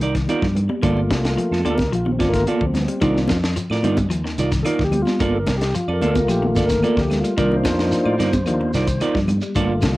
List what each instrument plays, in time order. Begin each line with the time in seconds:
0.00 fingered electric bass C2, clean electric guitar D#4 A#4 D5, muted clean electric guitar stroke, closed hi-hat
0.15 clean electric guitar D#3, muted clean electric guitar stroke, kick, snare, closed hi-hat
0.28 clean electric guitar D#4 F4 A#4 D5, closed hi-hat, high conga
0.42 fingered electric bass G2, clean electric guitar F3, kick, snare
0.55 muted clean electric guitar stroke, closed hi-hat, low conga
0.69 clean electric guitar G3, muted clean electric guitar stroke, high conga
0.82 fingered electric bass G1, clean electric guitar D3 A#3 F4 A4 D5, tonewheel organ A3 A#3 F4, kick, closed hi-hat, low conga
0.97 high conga
1.10 fingered electric bass C2, clean electric guitar G3, muted clean electric guitar stroke, kick, snare, closed hi-hat, high conga
1.24 muted clean electric guitar stroke, snare, closed hi-hat
1.37 clean electric guitar F3, muted clean electric guitar stroke, closed hi-hat
1.51 fingered electric bass F2, clean electric guitar F4 A4, snare
1.65 fingered electric bass D2, clean electric guitar D3 F4 A4 D5, closed hi-hat, high conga
1.70 tonewheel organ A4
1.75 tonewheel organ A#4, high conga
1.79 muted clean electric guitar stroke, kick, snare, closed hi-hat
1.92 fingered electric bass A#1, clean electric guitar F3, tonewheel organ F4, closed hi-hat
2.06 clean electric guitar D#3, muted clean electric guitar stroke, high conga
2.12 tonewheel organ C4
2.19 fingered electric bass G1, tonewheel organ A3 A#3 F4, clean electric guitar A#3 F4 A4 D5, kick, snare, closed hi-hat
2.29 tonewheel organ A#4
2.33 clean electric guitar D#3, muted clean electric guitar stroke, kick, snare, closed hi-hat
2.46 clean electric guitar A#3 F4 A4 D5, tonewheel organ F4, closed hi-hat, high conga
2.61 fingered electric bass D2, clean electric guitar F3, kick
2.66 tonewheel organ C4
2.74 muted clean electric guitar stroke, snare, closed hi-hat, high conga, low conga
2.80 tonewheel organ B3
2.85 clean electric guitar G3, tonewheel organ C4, muted clean electric guitar stroke, closed hi-hat
3.00 fingered electric bass C2, clean electric guitar D#3 D#4 F4 A#4 D5, tonewheel organ A#3 D4 D#4 F4, kick, closed hi-hat, low conga, shekere
3.14 snare, high conga
3.28 fingered electric bass F2, clean electric guitar F3, muted clean electric guitar stroke, kick, snare, closed hi-hat, high conga, claves, shekere
3.43 muted clean electric guitar stroke, snare, shekere
3.56 clean electric guitar F3, muted clean electric guitar stroke, closed hi-hat, shekere
3.70 fingered electric bass A2, clean electric guitar F4 A#4 D5, snare, claves
3.83 fingered electric bass G2, clean electric guitar D3 D#4 F4 A#4 D5, closed hi-hat, high conga, shekere
3.97 muted clean electric guitar stroke, kick, closed hi-hat, high conga, low conga, shekere
4.10 fingered electric bass D#2, clean electric guitar F3, closed hi-hat, claves, shekere
4.24 clean electric guitar D#3, muted clean electric guitar stroke, snare
4.38 fingered electric bass C2, clean electric guitar D#4 F4 A#4 D5, closed hi-hat, shekere
4.52 clean electric guitar D#3, muted clean electric guitar stroke, kick, snare, closed hi-hat, shekere
4.63 clean electric guitar D#4 F4 A#4 D5, tonewheel organ A4, closed hi-hat, high conga, claves, shekere
4.67 tonewheel organ A#4
4.79 fingered electric bass D2, clean electric guitar F3, kick, snare
4.84 tonewheel organ G4
4.92 muted clean electric guitar stroke, closed hi-hat, high conga, low conga, claves, shekere
5.02 tonewheel organ F4, high conga
5.07 clean electric guitar G3, muted clean electric guitar stroke, snare, shekere
5.19 fingered electric bass G1, clean electric guitar D3 A#3 F4 A4 D5, tonewheel organ A#4, kick, closed hi-hat, low conga, shekere
5.35 tonewheel organ A4
5.40 tonewheel organ A#4
5.47 fingered electric bass C2, muted clean electric guitar stroke, kick, snare, closed hi-hat, high conga, claves, shekere
5.58 tonewheel organ G4, muted clean electric guitar stroke, closed hi-hat, shekere
5.62 snare
5.74 clean electric guitar F3, tonewheel organ F4, muted clean electric guitar stroke, closed hi-hat, shekere
5.88 fingered electric bass F2, clean electric guitar F4 A4 D5, claves
5.93 tonewheel organ A#4
6.01 fingered electric bass D2, tonewheel organ A3 A#3 F4, clean electric guitar A#3 F4 A4 D5, closed hi-hat, high conga, shekere
6.07 tonewheel organ A4
6.11 tonewheel organ A#4
6.15 muted clean electric guitar stroke, kick, closed hi-hat, high conga, shekere
6.28 fingered electric bass A#1, clean electric guitar F3, tonewheel organ G4, closed hi-hat, claves, shekere
6.42 clean electric guitar D#3, muted clean electric guitar stroke, high conga
6.47 tonewheel organ F4
6.55 fingered electric bass G1, clean electric guitar F4 A4 D5, muted clean electric guitar stroke, kick, snare, closed hi-hat, shekere
6.66 clean electric guitar D#3, tonewheel organ A#4, muted clean electric guitar stroke, shekere
6.70 kick, snare, closed hi-hat
6.83 clean electric guitar A#3 F4 A4 D5, tonewheel organ A#4, closed hi-hat, high conga, claves, shekere
6.97 fingered electric bass D2, clean electric guitar F3, kick, snare
7.01 tonewheel organ G4
7.10 muted clean electric guitar stroke, snare, closed hi-hat, low conga, claves, shekere
7.20 clean electric guitar G3, tonewheel organ F4, muted clean electric guitar stroke, shekere
7.24 closed hi-hat
7.37 fingered electric bass C2, clean electric guitar D#3 D#4 F4 A#4 D5, tonewheel organ A#3 D4 D#4 F4 A#4, kick, closed hi-hat, low conga, shekere
7.52 high conga
7.56 tonewheel organ C5
7.64 fingered electric bass F2, clean electric guitar F3, muted clean electric guitar stroke, kick, snare, closed hi-hat, high conga, claves, shekere
7.78 muted clean electric guitar stroke, snare, shekere
7.91 clean electric guitar F3, muted clean electric guitar stroke, snare, closed hi-hat, shekere
8.05 fingered electric bass A2, clean electric guitar F4 A#4 D5, claves
8.19 fingered electric bass G2, clean electric guitar D3 D#4 F4 A#4 D5, snare, closed hi-hat, high conga, shekere
8.33 muted clean electric guitar stroke, kick, closed hi-hat, high conga, shekere
8.46 fingered electric bass D#2, clean electric guitar F3, tonewheel organ A#3 D4 D#4 F4, closed hi-hat, claves, shekere
8.61 clean electric guitar D#3, muted clean electric guitar stroke, high conga
8.74 fingered electric bass C2, clean electric guitar D#4 F4 A#4 D5, snare, closed hi-hat, shekere
8.87 clean electric guitar D#3, kick, closed hi-hat, shekere
9.00 clean electric guitar D#4 F4 A#4 D5, closed hi-hat, high conga, claves, shekere
9.15 fingered electric bass G2, clean electric guitar F3, kick, snare
9.28 muted clean electric guitar stroke, closed hi-hat, high conga, low conga, claves, shekere
9.42 clean electric guitar G3, muted clean electric guitar stroke, shekere
9.55 fingered electric bass G1, clean electric guitar D3 A#3 F4 A4 D5, tonewheel organ A3 A#3 F4, kick, closed hi-hat, low conga, shekere
9.82 fingered electric bass C2, clean electric guitar D3, muted clean electric guitar stroke, kick, snare, closed hi-hat, high conga, claves, shekere